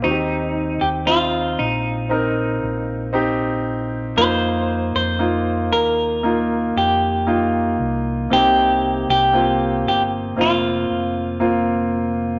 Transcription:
<<
  \new Staff \with { instrumentName = "Clean electric guitar" } { \time 4/4 \key f \mixolydian \tempo 4 = 58 ees'8. g'16 f'8 ees'4. r4 | c''8. c''8. bes'4 g'4 r8 | g'8. g'8. g'8 f'4. r8 | }
  \new Staff \with { instrumentName = "Grand piano" } { \time 4/4 \key f \mixolydian <c' ees' fis' g'>4 <c' ees' f'>4 <c' ees' bes'>4 <c' ees' g'>4 | <bes ees' f'>4 <bes ees' f'>4 <bes ees' f'>4 <bes ees' f'>4 | <bes c' ees'>4 <bes c' f'>4 <bes c' f'>4 <bes c' f'>4 | }
  \new Staff \with { instrumentName = "Grand piano" } { \clef bass \time 4/4 \key f \mixolydian ees4. r2 r8 | r1 | c4. r2 r8 | }
  \new Staff \with { instrumentName = "Fingered electric bass" } { \clef bass \time 4/4 \key f \mixolydian ees,8. ees,8. bes,,4 bes,,4. | f,8. f,8. ees,4 f,4 c,8 | c,8. c,8. g,,8 f,,8 f,,4. | }
>>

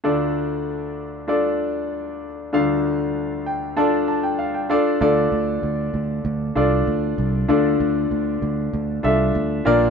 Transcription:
<<
  \new Staff \with { instrumentName = "Grand piano" } { \time 4/4 \key d \minor \tempo 4 = 97 << { r1 | r4. g''8 a''8 a''16 g''16 f''16 g''16 f''8 | r1 | r1 | } \\ { <d' f' a' d''>4. r8 <d' f' a' d''>4. r8 | <d' f' a' f''>4. r8 <d' f' a' d''>4. <d' f' a' d''>8 | <d' f' a' d''>4. r4 <d' f' a' d''>4 r8 | <d' f' a' d''>4. r4 <d' f' a' e''>4 <d' f' bes' d''>8 | } >> }
  \new Staff \with { instrumentName = "Grand piano" } { \clef bass \time 4/4 \key d \minor <d, d>1 | <d, d>2.~ <d, d>8 r8 | d4. r2 r8 | d4. r2 bes,8 | }
  \new Staff \with { instrumentName = "Picked electric bass" } { \clef bass \time 4/4 \key d \minor r1 | r1 | d,8 d,8 d,8 d,8 d,8 c,8 d,8 c,8 | d,8 d,8 d,8 d,8 d,8 c,8 d,8 bes,,8 | }
>>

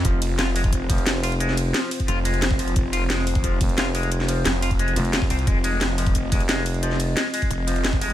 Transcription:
<<
  \new Staff \with { instrumentName = "Analog synth pad" } { \time 4/4 \key f \minor \tempo 4 = 177 << { c''1~ | c''1~ | c''1~ | c''1 |
ees''1~ | ees''1 | } \\ { <c' f'>1~ | <c' f'>1~ | <c' f'>1~ | <c' f'>1~ |
<c' f'>1~ | <c' f'>1 | } >> }
  \new Staff \with { instrumentName = "Clean electric guitar" } { \clef bass \time 4/4 \key f \minor f8 r8 f'8 aes8 r8 f8 r8 f'8 | aes8 r8 f8 r8 f'8 aes8 r8 f8 | r8 f'8 aes8 r8 f8 r8 f'8 aes8 | r8 f8 r8 f'8 aes8 f8 f'8 c'8 |
aes8 aes8 r8 f8 r8 aes8 aes8 r8 | f8 r8 aes8 aes8 r8 f8 r8 aes8 | }
  \new Staff \with { instrumentName = "Detuned saw bass" } { \clef bass \time 4/4 \key f \minor f,,2~ f,,8 r4. | r2 f,,2 | f,,2~ f,,8 r4. | r4 f,,4. r4 c,8 |
f,,2~ f,,8 r4. | r2 f,,2 | }
  \new Staff \with { instrumentName = "FM bass" } { \clef bass \time 4/4 \key f \minor r2 r8 f,,4.~ | f,,4 r2. | r2 r8 f,,4.~ | f,,4 r4. f,,4 r8 |
r2 r8 f,,4.~ | f,,4 r2. | }
  \new DrumStaff \with { instrumentName = "Drums" } \drummode { \time 4/4 <hh bd>8 <hh cymr>8 <hh sn>8 <hho cymr>16 <hh bd>16 <hh bd>8 <hh bd cymr>16 hh16 <hh sn>8 <hho cymr>16 hh16 | hh16 sn16 <hh cymr>8 <hh sn>8 <hho cymr>16 <hh bd>16 hh8 <hh cymr>16 hh16 <hh sn>16 bd16 <hho cymr>16 hh16 | <hh bd>8 <hh cymr>8 <hh sn>8 <hho cymr>16 <hh bd>16 <hh bd>8 <hh bd cymr>16 hh16 <hh sn>8 <hho cymr>16 hh16 | hh16 sn16 <hh cymr>8 <hh sn>8 <hho cymr>16 <hh bd>16 hh16 hh16 <hh cymr>16 hh16 <hh sn>16 bd16 <hho cymr>16 hh16 |
<hh bd>8 <hh cymr>8 <hh sn>8 <hho cymr>16 <hh bd>16 <hh bd>8 <hh bd cymr>16 hh16 <hh sn>8 <hho cymr>16 hh16 | hh16 sn16 <hh cymr>8 <hh sn>8 <hho cymr>16 <hh bd>16 hh8 <hh cymr>16 hh16 <hh sn>16 bd16 <hho cymr>16 hh16 | }
>>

